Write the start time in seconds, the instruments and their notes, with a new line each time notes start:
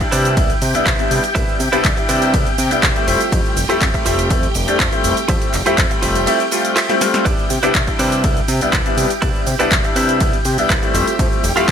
Already playing: string machine G4 G5
0.00 grand piano G3 D4 E4, muted clean electric guitar stroke, kick, closed hi-hat, cabasa
0.11 analog synth bass C3, clean electric guitar E4 B4 C5 D5, open hi-hat, tambourine, cabasa
0.25 closed hi-hat, tambourine, cabasa
0.37 analog synth bass C2, grand piano G3 B3 D4 E4, kick, closed hi-hat, ride, tambourine, cabasa
0.50 closed hi-hat, cabasa
0.62 analog synth bass C3, open hi-hat, tambourine, cabasa
0.74 analog synth bass C2, grand piano G3 B3 D4 E4, closed hi-hat, tambourine, cabasa
0.86 analog synth bass C2, clean electric guitar E4 B4 C5 E5, kick, clap, closed hi-hat, ride, cabasa
0.99 grand piano G3 B3 D4 E4, closed hi-hat, cabasa
1.11 analog synth bass C3, open hi-hat, tambourine, cabasa
1.24 closed hi-hat, tambourine, cabasa
1.35 analog synth bass C2, grand piano G3 B3 D4 E4, clean electric guitar E4 B4 C5 E5, kick, closed hi-hat, ride, tambourine, cabasa
1.48 cabasa
1.60 analog synth bass C3, open hi-hat, tambourine, cabasa
1.72 analog synth bass C2, grand piano G3 B3 D4 E4, clean electric guitar E4 B4 C5 D5, closed hi-hat, tambourine, cabasa
1.85 analog synth bass C2, kick, clap, closed hi-hat, ride, cabasa
1.97 grand piano G3 D4 E4, muted clean electric guitar stroke, closed hi-hat, cabasa
2.09 analog synth bass C3, clean electric guitar E4 B4 C5 D5, open hi-hat, tambourine, cabasa
2.22 closed hi-hat, tambourine, cabasa
2.33 analog synth bass C2, grand piano G3 B3 D4 E4, kick, closed hi-hat, ride, tambourine, cabasa
2.47 analog synth bass C3, closed hi-hat, cabasa
2.58 analog synth bass C3, open hi-hat, tambourine, cabasa
2.71 analog synth bass C2, grand piano G3 B3 D4 E4, closed hi-hat, tambourine, cabasa
2.83 analog synth bass C2, clean electric guitar E4 B4 C5 D5, kick, clap, closed hi-hat, ride, cabasa
2.95 grand piano G3 A3 C4 E4, closed hi-hat, cabasa
3.07 analog synth bass F1, clean electric guitar F4 A4 C5 E5, open hi-hat, tambourine, cabasa
3.21 closed hi-hat, tambourine, cabasa
3.31 analog synth bass F2, grand piano G3 A3 C4 E4, kick, closed hi-hat, ride, tambourine, cabasa
3.45 cabasa
3.57 analog synth bass F1, open hi-hat, tambourine, cabasa
3.69 analog synth bass F2, grand piano G3 A3 C4 E4, clean electric guitar F4 A4 C5 E5, closed hi-hat, tambourine, cabasa
3.81 analog synth bass F2, kick, clap, closed hi-hat, ride, cabasa
3.94 grand piano G3 A3 C4 E5, muted clean electric guitar stroke, kick, closed hi-hat, cabasa
4.05 analog synth bass F1, clean electric guitar F4 A4 C5 E5, open hi-hat, tambourine, cabasa
4.19 closed hi-hat, tambourine, cabasa
4.30 analog synth bass F2, grand piano G3 A3 C4 E4, kick, closed hi-hat, ride, tambourine, cabasa
4.43 closed hi-hat, cabasa
4.54 analog synth bass F1, open hi-hat, tambourine, cabasa
4.67 analog synth bass F2, grand piano G3 A3 C4 D4, closed hi-hat, tambourine, cabasa
4.79 analog synth bass F2, clean electric guitar F4 A4 C5 E5, kick, clap, closed hi-hat, ride, tambourine, cabasa
4.92 grand piano G3 A3 C4 E4, closed hi-hat, cabasa
5.04 analog synth bass F1, open hi-hat, tambourine, cabasa
5.17 closed hi-hat, tambourine, cabasa
5.28 analog synth bass F2, grand piano G3 A3 C4 E4, clean electric guitar F4 A4 C5 E5, kick, closed hi-hat, ride, tambourine, cabasa
5.42 closed hi-hat, cabasa
5.54 analog synth bass F1, clap, open hi-hat, tambourine, cabasa
5.66 analog synth bass F2, grand piano G3 A3 C4 E4, clean electric guitar F4 A4 C5 E5, closed hi-hat, tambourine, cabasa
5.78 analog synth bass F2, kick, clap, closed hi-hat, ride, tambourine, cabasa
5.90 grand piano G3 A3 C4, muted clean electric guitar stroke, closed hi-hat, cabasa
6.02 analog synth bass F1, clean electric guitar F4 A4 C5 E5, open hi-hat, tambourine, cabasa
6.15 closed hi-hat, tambourine, cabasa
6.26 grand piano G3 A3 C4 E4, closed hi-hat, ride, tambourine, cabasa
6.40 closed hi-hat, cabasa
6.51 grand piano G3 A3 C4 F4, open hi-hat, tambourine, cabasa
6.64 closed hi-hat, tambourine, cabasa
6.76 clean electric guitar F4 A4 C5 E5, clap, closed hi-hat, ride, tambourine, cabasa
6.89 grand piano G3 A3 C4 E4, snare, closed hi-hat, cabasa
7.01 grand piano G3 A3 C4 F4, snare, open hi-hat, tambourine, cabasa
7.14 snare, closed hi-hat, tambourine, cabasa
7.25 analog synth bass C2, clean electric guitar E4 B4 C5 D5, string machine G4 G5, kick, closed hi-hat, ride, tambourine, cabasa
7.39 cabasa
7.50 analog synth bass C3, open hi-hat, tambourine, cabasa
7.63 analog synth bass C2, grand piano G3 B3 D4 E4, clean electric guitar E4 B4 C5 D5, closed hi-hat, tambourine, cabasa
7.75 analog synth bass C2, kick, clap, closed hi-hat, ride, cabasa
7.87 grand piano G3 D4 E4, muted clean electric guitar stroke, kick, closed hi-hat, cabasa
7.99 analog synth bass C3, clean electric guitar E4 B4 C5 D5, open hi-hat, tambourine, cabasa
8.12 closed hi-hat, tambourine, cabasa
8.24 analog synth bass C2, grand piano G3 B3 D4 E4, kick, closed hi-hat, ride, cabasa
8.37 closed hi-hat, cabasa
8.48 analog synth bass C3, open hi-hat, tambourine, cabasa
8.61 analog synth bass C2, grand piano G3 B3 D4 E4, closed hi-hat, tambourine, cabasa
8.73 analog synth bass C2, clean electric guitar E4 B4 C5 D5, kick, clap, closed hi-hat, ride, cabasa
8.86 grand piano G3 B3 D4 E4, closed hi-hat, cabasa
8.97 analog synth bass C3, open hi-hat, tambourine, cabasa
9.10 closed hi-hat, tambourine, cabasa
9.22 analog synth bass C2, grand piano G3 B3 D4 E4, clean electric guitar E4 B4 C5 D5, kick, closed hi-hat, ride, cabasa
9.35 cabasa
9.46 analog synth bass C3, open hi-hat, tambourine, cabasa
9.59 analog synth bass C2, grand piano G3 B3 D4 E4, clean electric guitar E4 B4 C5 D5, closed hi-hat, tambourine, cabasa
9.72 analog synth bass C2, kick, clap, closed hi-hat, ride, cabasa
9.84 grand piano G3 D4 E4, muted clean electric guitar stroke, closed hi-hat, cabasa
9.96 analog synth bass C3, clean electric guitar E4 B4 C5 E5, open hi-hat, tambourine, cabasa
10.08 closed hi-hat, tambourine, cabasa
10.21 analog synth bass C2, grand piano G3 B3 D4 E4, kick, closed hi-hat, ride, tambourine, cabasa
10.33 analog synth bass C3, closed hi-hat, cabasa
10.45 analog synth bass C3, open hi-hat, tambourine, cabasa
10.58 analog synth bass C2, grand piano G3 B3 D4 E4, closed hi-hat, tambourine, cabasa
10.70 analog synth bass C2, clean electric guitar E4 B4 C5 D5, kick, clap, closed hi-hat, ride, cabasa
10.82 grand piano G3 A3 C4 E4, closed hi-hat, cabasa
10.94 analog synth bass F1, clean electric guitar F4 A4 C5 E5, open hi-hat, tambourine, cabasa
11.07 closed hi-hat, tambourine, cabasa
11.19 analog synth bass F2, grand piano G3 A3 C4 E4, kick, closed hi-hat, ride, tambourine, cabasa
11.32 cabasa
11.44 analog synth bass F1, open hi-hat, tambourine, cabasa
11.56 analog synth bass F2, grand piano G3 A3 C4 E4, clean electric guitar F4 A4 C5 F5, closed hi-hat, tambourine, cabasa